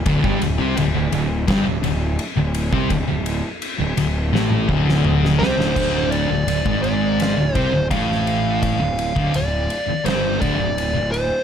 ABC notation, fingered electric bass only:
X:1
M:4/4
L:1/16
Q:1/4=84
K:Dm
V:1 name="Fingered electric bass" clef=bass
D,,, G,,, D,,, C,, D,,, D,,, D,,,2 G,,, D,,, D,,,2 z D,,,2 C,, | D,,, D,,,2 z2 D,,, D,,,2 A,,,2 D,,,4 C,, D,,, | D,,,3 D,,, D,,, ^G,,,4 D,,, C,, D,,, A,,,4- | A,,, D,,,2 D,,, D,,,2 z2 G,,,2 D,,, D,,,2 D,,,2 z |]